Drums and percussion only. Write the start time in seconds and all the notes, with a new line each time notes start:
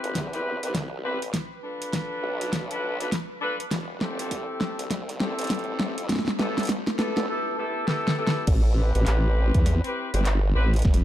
0.04 closed hi-hat
0.15 kick, snare, closed hi-hat
0.33 closed hi-hat
0.63 closed hi-hat
0.75 kick, snare, closed hi-hat
1.22 closed hi-hat
1.34 kick, snare, closed hi-hat
1.82 closed hi-hat
1.93 kick, snare, closed hi-hat
2.41 closed hi-hat
2.53 kick, snare, closed hi-hat
2.71 closed hi-hat
3.01 closed hi-hat
3.12 kick, snare, closed hi-hat
3.60 closed hi-hat
3.71 kick, snare, closed hi-hat
4.01 snare
4.19 closed hi-hat
4.31 kick, closed hi-hat
4.61 snare
4.79 closed hi-hat
4.91 kick, snare, closed hi-hat
5.09 closed hi-hat
5.20 snare
5.39 closed hi-hat
5.41 closed hi-hat
5.44 closed hi-hat
5.47 snare, closed hi-hat
5.50 kick, closed hi-hat
5.59 closed hi-hat
5.64 closed hi-hat
5.80 snare
5.98 closed hi-hat
6.09 kick, snare, closed hi-hat
6.12 snare
6.16 snare
6.19 snare
6.25 snare
6.28 snare
6.39 snare
6.58 snare, closed hi-hat
6.59 closed hi-hat
6.63 closed hi-hat
6.65 closed hi-hat
6.67 snare, closed hi-hat
6.69 kick, closed hi-hat
6.87 snare
6.99 snare
7.17 snare
7.88 snare
8.08 snare
8.27 snare
8.47 kick, closed hi-hat, crash
8.95 closed hi-hat
9.07 clap, closed hi-hat
9.54 kick, closed hi-hat
9.66 snare, closed hi-hat
9.84 closed hi-hat
10.14 closed hi-hat
10.25 clap, closed hi-hat
10.74 closed hi-hat
10.76 closed hi-hat
10.79 closed hi-hat
10.82 kick, snare, closed hi-hat
10.88 snare
10.91 snare
10.94 snare, closed hi-hat
11.00 snare